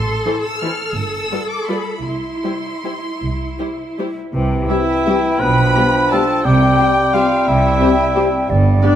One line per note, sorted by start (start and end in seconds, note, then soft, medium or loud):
0.00 0.18 A1 medium
0.00 0.60 A4 medium
0.00 0.43 C6 medium
0.25 0.34 E3 soft
0.25 0.34 E4 soft
0.25 0.33 A4 soft
0.25 0.34 C5 soft
0.43 0.61 E6 medium
0.61 0.71 E3 soft
0.61 0.71 E4 soft
0.61 2.03 A4 medium
0.61 0.70 A4 soft
0.61 0.70 C5 soft
0.61 0.96 F6 medium
0.96 1.24 G1 medium
0.96 1.50 E6 medium
1.31 1.39 G3 soft
1.31 1.40 F4 soft
1.31 1.40 B4 soft
1.31 1.40 D5 soft
1.51 1.69 D6 medium
1.69 1.77 G3 soft
1.69 1.77 F4 soft
1.69 1.77 B4 soft
1.69 1.77 D5 soft
1.69 2.06 B5 medium
2.05 2.36 C2 soft
2.05 4.13 E4 soft
2.05 3.98 C6 medium
2.44 2.52 G3 soft
2.44 2.52 E4 soft
2.44 2.52 G4 soft
2.44 2.52 C5 soft
2.84 2.92 G3 soft
2.84 2.92 E4 soft
2.84 2.92 G4 soft
2.84 2.92 C5 soft
3.21 3.51 C2 soft
3.59 3.68 G3 soft
3.59 3.68 E4 soft
3.59 3.67 G4 soft
3.59 3.67 C5 soft
3.99 4.07 G3 soft
3.99 4.07 E4 soft
3.99 4.07 G4 soft
3.99 4.07 C5 soft
4.34 4.63 C2 medium
4.34 4.63 C3 medium
4.34 5.42 E3 soft
4.34 5.43 E4 medium
4.34 6.40 G5 medium
4.69 4.78 G3 soft
4.69 4.82 C4 medium
4.69 5.42 E4 medium
4.69 4.78 E4 soft
4.69 4.82 G4 soft
4.69 4.78 E5 soft
4.69 5.37 E5 medium
5.05 5.15 G3 soft
5.05 5.18 C4 soft
5.05 5.15 E4 medium
5.05 5.18 G4 soft
5.05 5.14 E5 soft
5.40 5.70 B1 medium
5.40 5.69 B2 medium
5.40 6.47 F3 medium
5.40 6.46 D4 medium
5.40 6.11 B4 medium
5.40 6.12 B5 medium
5.74 5.84 G3 soft
5.74 5.88 B3 medium
5.74 5.85 F4 soft
5.74 5.88 G4 soft
5.74 5.83 D5 soft
6.11 6.21 G3 soft
6.11 6.24 B3 soft
6.11 6.20 F4 soft
6.11 6.24 G4 soft
6.11 6.46 A4 medium
6.11 6.19 D5 soft
6.11 6.45 A5 medium
6.45 6.72 C2 medium
6.45 6.73 C3 medium
6.45 8.49 G3 medium
6.45 8.50 C4 medium
6.45 7.15 G4 medium
6.45 7.13 G5 medium
6.45 8.51 G5 medium
6.78 6.87 G3 soft
6.78 6.92 C4 soft
6.78 6.87 G4 soft
6.78 6.92 G4 medium
6.78 6.86 C5 medium
7.14 7.22 G3 medium
7.14 7.26 C4 soft
7.14 7.47 F4 medium
7.14 7.22 G4 soft
7.14 7.26 G4 soft
7.14 7.24 C5 soft
7.14 7.48 F5 medium
7.47 7.75 C2 medium
7.47 7.75 C3 medium
7.47 8.48 E4 medium
7.47 8.50 E5 medium
7.81 7.89 G3 soft
7.81 7.94 C4 medium
7.81 7.89 G4 soft
7.81 7.94 G4 medium
7.81 7.89 C5 soft
8.16 8.24 G3 medium
8.16 8.29 C4 soft
8.16 8.24 G4 medium
8.16 8.29 G4 soft
8.16 8.24 C5 soft
8.49 8.78 G1 medium
8.49 8.78 G2 medium
8.49 8.96 G3 medium
8.49 8.96 B3 medium
8.49 8.96 D5 medium
8.82 8.91 B3 medium
8.82 8.96 B3 medium
8.82 8.96 D4 medium
8.82 8.91 G4 soft
8.82 8.90 D5 medium
8.82 8.96 D5 medium